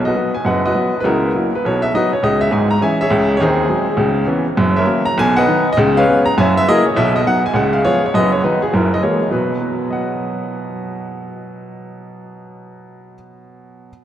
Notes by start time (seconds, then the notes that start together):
Already playing: B1 B2
0.05 F#4 B4 D#5
0.15 F#3 B3 F#4
0.34 G#5
0.45 F#1 F#2 B4 D#5 F#5
0.66 F#4 B4 D#5
0.75 F#3 B3 F#4
1.00 C#2 C#3 B4
1.05 E4 F#4 A#4
1.34 F#3 A#3 E4
1.55 B4
1.65 B1 B2 C#5
1.82 E5
1.94 F#3 B3 D#4 F#4 B4 D#5
2.13 C#5
2.23 C#2 C#3 D#5
2.41 E5
2.51 G#1 G#2 G#5
2.71 A#5
2.81 E3 G#3 C#4 C#5 E5 G#5
3.01 G#4 C#5 E5
3.10 C#2 C#3
3.37 D#2 D#3 C#5
3.41 C4 D#4 G#4
3.69 F#3 G#3 C4
3.97 C#2 C#3
4.26 E3 B3 C#4
4.57 F#1 F#2
4.76 A#4 C#5 E5
4.86 F#3 A#3 C#4
5.05 A#5
5.18 B1 B2 G#5
5.37 B4 D#5 F#5
5.47 D#3 B3 D#4
5.73 D#5
5.77 C#2 C#3
5.97 B4 C#5 F5
6.08 G#3 B3 C#4
6.25 A#5
6.37 F#1 F#2 C#5 E5 G#5
6.57 E5
6.68 F#3 A#3 E4 G#4 A#4 D#5
6.86 C#5
6.96 B1 B2 E5
7.16 D#5
7.26 F#3 B3 D#4 F#5
7.46 G#5
7.54 C#2 C#3 F#5
7.73 F5
7.83 F3 G#3 B3 F4 G#4 C#5
8.06 C#5
8.14 F#1 F#2 F#4 B4 D#5
8.32 C#5
8.43 D#3 F#3 B3 D#4 F#4 B4
8.62 G#4
8.73 F#1 F#2 E4 F#4 A#4
8.94 D#5
9.02 E3 G#3 A#3 G#4 A#4 C#5
9.31 B2 F#3 B4
9.90 D#5 F#5